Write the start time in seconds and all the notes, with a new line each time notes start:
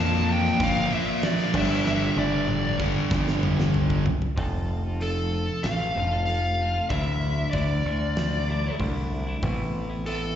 Already playing: F2 A#2 F3 A#3 A5
0.32 G5
0.45 snare
0.60 G1 A#2 F3 A#3 F5, kick, open hi-hat
0.91 A#2 F3 A#3 E5
1.22 A#2 F3 A#3 D5, snare, open hi-hat
1.39 snare
1.53 G1 G2 D3 G3, kick, crash
1.57 E5
1.86 E5, snare
2.16 G1 D5, high tom
2.48 mid tom
2.80 G2 D3 G3, kick
3.10 G1 G2 D3 G3, kick, snare
3.28 snare
3.43 G2 D3 G3, mid tom
3.60 snare
3.74 floor tom
3.90 kick
4.06 floor tom
4.22 floor tom
4.36 F1 F3 A3 C4 F4 A4, kick, open hi-hat
4.84 C4 F4 A4
5.00 F3 A3 C4 F4 A4, open hi-hat
5.31 A3 C4 F4 A4
5.48 muted clean electric guitar stroke
5.63 A1 F5, snare, open hi-hat
5.80 muted clean electric guitar stroke
5.95 F1 A3 C4 F4 A4
6.12 C4 F4 A4
6.25 F3 A3 C4 F5, open hi-hat
6.30 F4 A4
6.58 A3 C4 F4 A4
6.74 C4 F4 A4
6.89 D2 D3 F#3 A3 D4 E4 E5, kick, open hi-hat
7.37 A3 D4 E4
7.51 D2 D3 F#3 D5, kick, open hi-hat
7.55 A3 D4 E4
7.85 D2 F#3 A3 D4 E4
8.02 muted clean electric guitar stroke
8.16 snare, open hi-hat
8.33 muted clean electric guitar stroke
8.48 F#3 A3 D4 E4
8.63 A3 D4 E4
8.79 C2 D3 F#3 A3 D4 E4, kick, open hi-hat
9.11 F#3 A3 D4 E4
9.27 A3 D4 E4
9.42 A1 A2 E3 B3 C4 E4, kick, open hi-hat
9.90 B3 C4 E4
10.05 A2 E3 B3 C4 E4 A4, open hi-hat